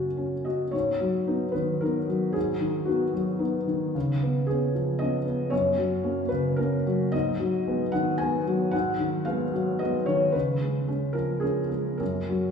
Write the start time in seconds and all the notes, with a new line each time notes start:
Already playing: F#2 C#3 C#4 F#4 A#4
0.17 C#4
0.45 F#4 D#5
0.71 G#2 C#5
1.01 F#3
1.27 B3 D#4
1.52 D#3 B4
1.81 B3 D#4 A#4
2.09 F#3
2.33 G#2 G#4
2.61 D#3
2.85 B3 D#4 F#4
3.14 F#3
3.39 B3 D#4
3.67 D#3
3.95 C#3
4.22 B3
4.47 B3 C#4 G#4
4.75 F3
4.99 B3 C#4 D#5
5.26 B3
5.50 F#2 C#5
5.78 F#3
6.03 A#3 C#4
6.29 C#3 B4
6.56 A#3 C#4 A#4
6.86 F#3
7.12 G#2 D#5
7.40 F#3
7.67 G#3 B3
7.92 D#3 F#5
8.18 G#3 B3 G#5
8.47 F#3
8.71 G#2 F#5
8.99 D#3
9.25 G#3 B3 F5
9.54 F#3
9.79 G#3 B3 D#5
10.06 D#3 C#5
10.32 C#3 B4
10.61 G#3
10.88 G#3 C#4
11.13 F3 A#4
11.40 G#3 C#4 G#4
11.69 G#3
11.98 F#2 A#4
12.29 F#3